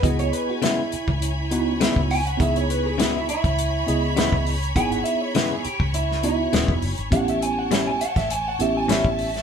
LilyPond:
<<
  \new Staff \with { instrumentName = "String section" } { \time 4/4 \key cis \minor \tempo 4 = 102 << { <gis'' b''>1~ | <gis'' b''>1~ | <gis'' b''>1 | <g'' a''>1 | } \\ { cis''1~ | cis''1~ | cis''1~ | cis''1 | } >> }
  \new Staff \with { instrumentName = "Clean electric guitar" } { \time 4/4 \key cis \minor fis'16 cis''16 b'16 fis'16 e'2 r8 gis''16 fis''16 | e''16 cis''16 b'16 gis'16 fis'16 e'16 e'2 r8 | gis''16 fis''16 e''16 cis''16 b'16 gis'16 g'16 fis'16 e'8 e'8 r4 | fis''16 e''16 gis''16 fis''16 e''16 gis''16 fis''16 e''16 gis''16 fis''16 e''16 gis''16 e''4 | }
  \new Staff \with { instrumentName = "Tine electric piano" } { \time 4/4 \key cis \minor <b e' gis' dis''>4. r4 <b dis' e' fis'>4 r8 | <b dis' e' gis'>4. r4 <b e' gis' dis''>4 r8 | <b dis' e' gis'>4. r4 <b dis' e' fis'>4 r8 | <b cis' e' g'>4. r4 <b cis' e' g'>4 r8 | }
  \new Staff \with { instrumentName = "Clean electric guitar" } { \time 4/4 \key cis \minor r4 <cis gis b e'>8 r4. <cis gis b e'>8 r8 | r4 <cis gis b e'>8 r4. <cis gis b e'>8 r8 | r4 <cis gis b e'>8 r4. <cis gis b e'>8 r8 | r4 <a, g cis' e'>8 r4. <a, g cis' e'>8 r8 | }
  \new Staff \with { instrumentName = "Fingered electric bass" } { \clef bass \time 4/4 \key cis \minor cis,8 r4 r16 cis,4. cis,8. | cis,4.~ cis,16 cis,8. cis,8. cis,8. | gis,,8 r4 r16 cis,4~ cis,16 dis,,16 e,,16 fis,,16 gis,,16 | a,,4.~ a,,16 a,,8. a,,8. a,,8. | }
  \new DrumStaff \with { instrumentName = "Drums" } \drummode { \time 4/4 <hh bd>16 hh16 hh8 <hh sn>8 hh16 bd16 hh8 hh8 <hh sn>16 bd16 hho16 hh16 | <hh bd>16 hh16 hh8 <hh sn>8 hh16 <hh bd>16 hh8 hh8 <hh sn>16 bd16 hho16 hh16 | <hh bd>16 hh16 hh8 <hh sn>8 hh16 bd16 hh16 sn16 hh8 <hh sn>16 bd16 hho16 hh16 | <hh bd>16 hh16 hh8 <hh sn>8 hh16 <hh bd sn>16 hh8 hh8 <hh sn>16 bd16 hho16 <hh sn>16 | }
>>